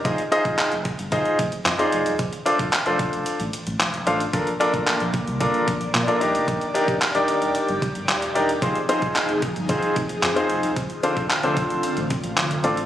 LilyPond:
<<
  \new Staff \with { instrumentName = "Grand piano" } { \time 4/4 \key f \mixolydian \tempo 4 = 112 <ees' f' aes' c'' ees''>16 r16 <ees' f' aes' c'' ees''>8. r8. <ees' f' aes' c'' ees''>8 r8 <c'' ees''>16 <ees' f' aes' c'' d''>8. | r8 <d' f' a' c'' d''>8 r16 <d' f' a' c'' d''>4 r4 r16 <d' f' a' c'' f''>16 r16 | <d' f' a' bes' d''>16 r16 <d' f' a' bes' d''>8. r8. <d' f' a' bes' d''>8 r8 <bes' d''>16 <d' f' a' bes' d''>16 <d' ees' g' bes' d''>8~ | <d' ees' g' bes' d''>16 r16 <d' ees' g' bes' d''>8 r16 <d' ees' g' bes' d''>4 r4 r16 <d' ees' g' bes' d''>16 r16 |
<c' ees' f' aes' c''>16 r16 <c' ees' f' aes' c''>8. r8. <c' ees' f' aes' c''>8 r8 <aes' c''>16 <c' ees' f' aes' c''>8. | r8 <c' d' f' a' c''>8 r16 <c' d' f' a' c''>4 r4 r16 <c' d' f' a' d''>16 r16 | }
  \new Staff \with { instrumentName = "Analog synth pad" } { \time 4/4 \key f \mixolydian r1 | r1 | <f bes d''>2.~ <f bes d''>8 <ees g'>8~ | <ees g'>1 |
<f ees' aes'>1 | <d c' f'>1 | }
  \new Staff \with { instrumentName = "Sub bass" } { \clef bass \time 4/4 \key f \mixolydian f,,16 r8 ees,,16 r16 f,,16 r16 g,,8 r16 f,,8 f,16 r16 f,,16 ees,,16 | d,,16 r8 d,,16 r16 f,,16 r16 f,,16 r16 a,,16 r16 a,,16 f,,8 a,,8 | bes,,16 r8 a,,16 r16 bes,,16 r16 c,8 r16 bes,,8 bes,16 r16 ees,,16 f,,16 | ees,,16 r8 d,,16 r16 ees,,16 r16 ees,,16 r16 g,,16 r16 g,,16 ees,,8 ees,,8 |
f,,16 r8 ees,,16 r16 f,,16 r16 g,,8 r16 f,,8 f,16 r16 f,,16 ees,,16 | d,,16 r8 d,,16 r16 f,,16 r16 f,,16 r16 a,,16 r16 a,,16 f,,8 a,,8 | }
  \new DrumStaff \with { instrumentName = "Drums" } \drummode { \time 4/4 <hh bd>16 hh16 hh16 <hh bd>16 <hc hh>16 hh16 <hh bd>16 hh16 <hh bd>16 hh16 <hh bd>16 hh16 <hc hh>16 hh16 hh16 hh16 | <hh bd>16 hh16 hh16 <hh bd>16 <hc hh>16 hh16 <hh bd>16 hh16 hh16 hh16 hh16 hh16 <hc hh>16 hh16 hh16 hh16 | <hh bd>16 hh16 hh16 <hh bd>16 <hc hh>16 hh16 <hh bd>16 hh16 <hh bd>16 hh16 <hh bd>16 hh16 <hc hh>16 hh16 hh16 hh16 | <hh bd>16 hh16 hh16 <hh bd>16 <hc hh>16 hh16 hh16 hh16 hh16 hh16 <hh bd>16 hh16 <hc hh>16 hh16 hh16 hh16 |
<hh bd>16 hh16 hh16 <hh bd>16 <hc hh>16 hh16 <hh bd>16 hh16 <hh bd>16 hh16 <hh bd>16 hh16 <hc hh>16 hh16 hh16 hh16 | <hh bd>16 hh16 hh16 <hh bd>16 <hc hh>16 hh16 <hh bd>16 hh16 hh16 hh16 <hh bd>16 hh16 <hc hh>16 hh16 hh16 hh16 | }
>>